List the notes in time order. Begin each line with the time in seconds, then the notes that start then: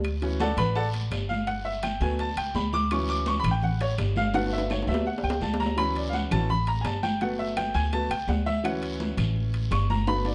Already playing: D2
0.04 high conga, high timbale, long guiro, claves
0.22 E3 F#3 C#4, high conga, high timbale
0.40 A4 D5 F#5 A5, high conga, low timbale, short guiro
0.57 A1 B4 B5, high conga, low conga, high timbale, short guiro, claves
0.75 A4 D5 F#5 A5, high conga, long guiro
0.94 high conga, high timbale
1.11 G1, high conga, high timbale, low timbale, short guiro, claves
1.29 F5, high conga, short guiro
1.47 F#5, high conga, high timbale, long guiro
1.65 E5, high conga
1.83 G5, high conga, high timbale, low timbale, short guiro, claves
2.01 D2 F#3 A3 B3 G#5, high conga, short guiro
2.19 A5, high conga, high timbale, long guiro
2.36 C#2 G5, high conga, high timbale, claves
2.55 D2 B5, high conga, low timbale, short guiro
2.73 D6, high conga, short guiro
2.91 E3 F#3 C#4 C#6, high conga, high timbale, long guiro, claves
3.08 D6, high conga, high timbale
3.26 C#6, high conga, low timbale, short guiro
3.40 B5
3.44 A1, high conga, low conga, high timbale, short guiro, claves
3.51 G5
3.62 F#5, high conga, low conga, long guiro
3.80 C#5, high conga, high timbale
3.98 G1, high conga, high timbale, low timbale, short guiro, claves
4.16 F5, high conga, short guiro
4.34 F#3 A3 B3 F#5, high conga, high timbale, long guiro
4.46 high timbale
4.52 E5, high conga
4.58 high timbale
4.70 C#5, high conga, high timbale, short guiro, claves
4.82 high timbale
4.87 D2 F#3 A3 B3 E5, high conga, short guiro
4.94 low timbale
5.06 F#5, high conga, long guiro
5.18 low timbale
5.23 C#2 G5, high conga, claves
5.30 low timbale
5.41 D2 A5, high conga, low timbale, short guiro
5.54 low timbale
5.60 A#5, high conga, short guiro
5.66 low timbale
5.77 E3 F#3 C#4 B5, high conga, high timbale, long guiro, claves
5.96 D5, high conga, high timbale
6.09 F5, high conga
6.14 F#5, low timbale, short guiro
6.31 A1 E3 F#3 C#4 A5, high conga, low conga, high timbale, short guiro, claves
6.49 B5, high conga, low conga, long guiro
6.67 A#5, high conga, high timbale
6.81 G1 G#5, high timbale, low timbale
6.85 A5, high conga, short guiro, claves
7.03 G5, high conga, short guiro
7.21 F#3 A3 B3 F#5, high conga, high timbale, long guiro
7.39 E5, high conga
7.57 G5, high conga, high timbale, low timbale, short guiro, claves
7.74 D2 G#5, high conga, short guiro
7.92 F#3 A3 B3 A5, high conga, high timbale, long guiro
8.10 C#2 G5, high conga, high timbale, claves
8.28 D2 F#5, high conga, low timbale, short guiro
8.46 E5, high conga, short guiro
8.64 E3 F#3 C#4 F#5, high conga, high timbale, long guiro, claves
8.83 high conga, high timbale
9.00 high conga, low timbale, short guiro
9.17 A1, high conga, low conga, high timbale, short guiro, claves
9.36 high conga, long guiro
9.54 high conga, high timbale
9.71 G1 C#6, high conga, high timbale, low timbale, short guiro, claves
9.90 A#5, high conga, short guiro
10.07 F#3 A3 B3 B5, high conga, high timbale, long guiro
10.25 D5, high conga, high timbale